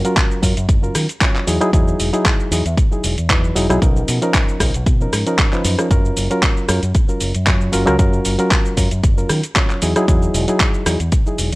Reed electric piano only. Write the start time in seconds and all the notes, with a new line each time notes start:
0.05 F#3 C#4 F4 A#4
0.43 F#3 C#4 F4 A#4
0.82 F#3 C#4 F4 A#4
1.20 F#3 C#4 F4 C#5
1.47 F#3 D#4 E4 G#4
1.61 F#3 D#4 E4 G#4
1.73 D#4
2.13 F#3 D#4 E4 G#4
2.51 F#3 D#4 E4 G#4
2.91 F#3 D#4 E4 G#4
3.29 F#3 D#4 E4 B4
3.55 F#3 D#4 E4 G#4
3.70 F#3 D#4 E4 G#4
3.82 F3 C#4 D#4 A#4
4.22 F3 C#4 D#4 A#4
4.60 F3 C#4 D#4 A#4
5.01 F3 C#4 D#4 A#4
5.27 F3 C#4 D#4 A#4
5.52 F3 C#4 D#4 B4
5.78 F3 C#4 D#4 A#4
5.90 F#3 C#4 F4 A#4
6.30 F#3 C#4 F4 A#4
6.68 F#3 C#4 F4 A#4
7.08 F#3 C#4 F4 A#4
7.47 F#3 C#4 F4 C#5
7.72 F#3 C#4 F4 A#4
7.86 F#3 C#4 F4 A#4
7.99 A#4
8.39 F#3 C#4 F4 A#4
8.77 F#3 C#4 F4 A#4
9.17 F#3 C#4 F4 A#4
9.56 F#3 C#4 F4 C#5
9.82 F#3 D#4 E4 G#4
9.96 F#3 D#4 E4 G#4
10.08 F#3 D#4 E4 G#4
10.48 F#3 D#4 E4 G#4
10.87 F#3 D#4 E4 G#4
11.27 F#3 D#4 E4 G#4